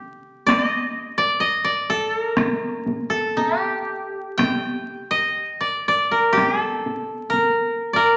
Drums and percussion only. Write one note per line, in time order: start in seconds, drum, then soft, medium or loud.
0.49 taiko rim medium
0.49 taiko high medium
2.37 taiko rim medium
2.37 taiko high medium
2.86 taiko high soft
3.37 taiko high soft
4.39 taiko rim medium
4.39 taiko high medium
6.37 taiko rim soft
6.37 taiko high medium
6.86 taiko high soft
7.33 taiko high soft